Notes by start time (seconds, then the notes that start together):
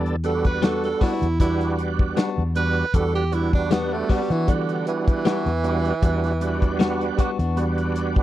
Already playing: E2 G3 B3 D4 A4
0.06 closed hi-hat
0.24 G3 B3 D4 F#4 A4, closed hi-hat
0.45 B4, kick, closed hi-hat
0.62 G3 B3 D4 F#4 A4, snare, closed hi-hat
0.84 A4, snare, closed hi-hat
1.01 G3 B3 D4 E4 F#4, kick, snare, open hi-hat
1.22 E2, closed hi-hat
1.39 G3 B3 D4 E4 F#4, kick, closed hi-hat
1.61 closed hi-hat
1.79 closed hi-hat
1.99 kick
2.17 G3 B3 D4 F#4, snare, closed hi-hat
2.38 E2
2.55 G3 B3 D4 F#4 B4, closed hi-hat
2.93 E2 G3 B3 D4 F#4 A4, kick, closed hi-hat
3.15 G4, closed hi-hat
3.32 G3 B3 D4 E4 F#4, closed hi-hat
3.53 D4, kick
3.71 G3 B3 D4 F#4, snare, closed hi-hat
3.93 A3
4.09 G3 B3 D4 F#4, kick, open hi-hat
4.30 E3 B3 D4 F#4, closed hi-hat
4.47 D3 G3 B3 D4 F#4, kick, closed hi-hat
4.69 closed hi-hat
4.87 E3, closed hi-hat
5.08 kick, closed hi-hat
5.25 G3 B3 D4 F#4, snare, closed hi-hat
5.46 E2, closed hi-hat
5.64 G3 B3 D4 F#4, closed hi-hat
5.85 closed hi-hat
6.02 E2 G3 B3 D4 F#4, kick, closed hi-hat
6.24 snare, closed hi-hat
6.40 G3 B3 D4 F#4, closed hi-hat
6.62 kick, closed hi-hat
6.79 G3 B3 D4 F#4, snare, closed hi-hat
7.01 closed hi-hat
7.18 G3 B3 D4 F#4, kick, closed hi-hat
7.39 E2 B3 D4 F#4, closed hi-hat
7.56 G3 B3 D4 F#4, closed hi-hat
7.78 closed hi-hat
7.96 closed hi-hat
8.16 kick